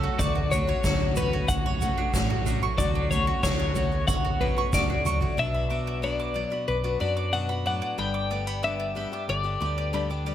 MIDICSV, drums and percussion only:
0, 0, Header, 1, 2, 480
1, 0, Start_track
1, 0, Key_signature, 2, "minor"
1, 0, Tempo, 650054
1, 142, Time_signature, 4, 2, 24, 8
1, 7639, End_track
2, 0, Start_track
2, 0, Title_t, "Drums"
2, 142, Note_on_c, 9, 36, 103
2, 142, Note_on_c, 9, 43, 73
2, 146, Note_on_c, 9, 82, 90
2, 216, Note_off_c, 9, 36, 0
2, 216, Note_off_c, 9, 43, 0
2, 220, Note_off_c, 9, 82, 0
2, 384, Note_on_c, 9, 43, 78
2, 384, Note_on_c, 9, 82, 63
2, 458, Note_off_c, 9, 43, 0
2, 458, Note_off_c, 9, 82, 0
2, 620, Note_on_c, 9, 82, 93
2, 621, Note_on_c, 9, 36, 97
2, 624, Note_on_c, 9, 38, 104
2, 624, Note_on_c, 9, 43, 79
2, 694, Note_off_c, 9, 82, 0
2, 695, Note_off_c, 9, 36, 0
2, 697, Note_off_c, 9, 38, 0
2, 697, Note_off_c, 9, 43, 0
2, 858, Note_on_c, 9, 82, 64
2, 863, Note_on_c, 9, 43, 72
2, 932, Note_off_c, 9, 82, 0
2, 937, Note_off_c, 9, 43, 0
2, 1098, Note_on_c, 9, 82, 78
2, 1099, Note_on_c, 9, 36, 103
2, 1099, Note_on_c, 9, 43, 72
2, 1172, Note_off_c, 9, 82, 0
2, 1173, Note_off_c, 9, 36, 0
2, 1173, Note_off_c, 9, 43, 0
2, 1340, Note_on_c, 9, 82, 52
2, 1341, Note_on_c, 9, 43, 86
2, 1414, Note_off_c, 9, 82, 0
2, 1415, Note_off_c, 9, 43, 0
2, 1578, Note_on_c, 9, 36, 101
2, 1579, Note_on_c, 9, 38, 90
2, 1579, Note_on_c, 9, 43, 68
2, 1583, Note_on_c, 9, 82, 82
2, 1652, Note_off_c, 9, 36, 0
2, 1652, Note_off_c, 9, 38, 0
2, 1652, Note_off_c, 9, 43, 0
2, 1657, Note_off_c, 9, 82, 0
2, 1817, Note_on_c, 9, 43, 76
2, 1819, Note_on_c, 9, 82, 56
2, 1891, Note_off_c, 9, 43, 0
2, 1893, Note_off_c, 9, 82, 0
2, 2055, Note_on_c, 9, 43, 75
2, 2056, Note_on_c, 9, 36, 100
2, 2061, Note_on_c, 9, 82, 74
2, 2128, Note_off_c, 9, 43, 0
2, 2129, Note_off_c, 9, 36, 0
2, 2135, Note_off_c, 9, 82, 0
2, 2294, Note_on_c, 9, 43, 79
2, 2300, Note_on_c, 9, 82, 58
2, 2367, Note_off_c, 9, 43, 0
2, 2374, Note_off_c, 9, 82, 0
2, 2534, Note_on_c, 9, 38, 101
2, 2534, Note_on_c, 9, 43, 77
2, 2535, Note_on_c, 9, 36, 94
2, 2538, Note_on_c, 9, 82, 85
2, 2608, Note_off_c, 9, 38, 0
2, 2608, Note_off_c, 9, 43, 0
2, 2609, Note_off_c, 9, 36, 0
2, 2612, Note_off_c, 9, 82, 0
2, 2771, Note_on_c, 9, 82, 52
2, 2774, Note_on_c, 9, 43, 75
2, 2845, Note_off_c, 9, 82, 0
2, 2848, Note_off_c, 9, 43, 0
2, 3014, Note_on_c, 9, 43, 75
2, 3014, Note_on_c, 9, 82, 76
2, 3015, Note_on_c, 9, 36, 101
2, 3088, Note_off_c, 9, 36, 0
2, 3088, Note_off_c, 9, 43, 0
2, 3088, Note_off_c, 9, 82, 0
2, 3252, Note_on_c, 9, 43, 85
2, 3325, Note_off_c, 9, 43, 0
2, 3494, Note_on_c, 9, 36, 99
2, 3494, Note_on_c, 9, 38, 54
2, 3494, Note_on_c, 9, 82, 82
2, 3567, Note_off_c, 9, 36, 0
2, 3567, Note_off_c, 9, 82, 0
2, 3568, Note_off_c, 9, 38, 0
2, 3731, Note_on_c, 9, 45, 75
2, 3735, Note_on_c, 9, 82, 61
2, 3805, Note_off_c, 9, 45, 0
2, 3809, Note_off_c, 9, 82, 0
2, 3848, Note_on_c, 9, 43, 76
2, 3922, Note_off_c, 9, 43, 0
2, 7639, End_track
0, 0, End_of_file